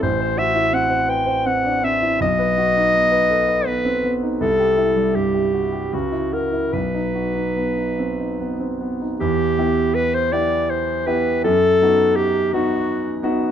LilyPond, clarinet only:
\new Staff \with { instrumentName = "Clarinet" } { \time 3/4 \key e \minor \tempo 4 = 81 c''8 e''8 fis''8 g''8 fis''8 e''8 | dis''2 b'8. r16 | a'4 g'4 fis'8 ais'8 | b'2~ b'8 r8 |
g'4 b'16 c''16 d''8 c''8 b'8 | a'4 g'8 fis'4 r8 | }